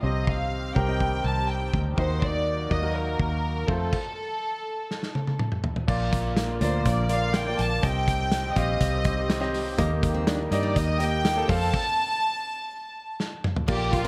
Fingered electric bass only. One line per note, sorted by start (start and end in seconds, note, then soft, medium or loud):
0.03 0.72 C2 medium
0.76 1.22 C2 medium
1.24 1.70 C2 medium
1.73 1.96 D2 medium
1.98 2.67 D#2 medium
2.71 3.16 D#2 medium
3.20 3.65 D#2 medium
3.68 3.91 F2 medium
5.88 6.58 A#1 loud
6.61 6.84 D2 medium
6.86 7.55 A#1 medium
7.59 7.82 A#1 medium
7.83 8.53 C2 loud
8.56 8.79 A#1 medium
8.81 9.74 C2 medium
9.78 10.48 D#2 loud
10.51 10.74 G2 medium
10.76 11.46 D#2 loud
11.49 11.72 F2 medium
13.69 14.08 A#1 loud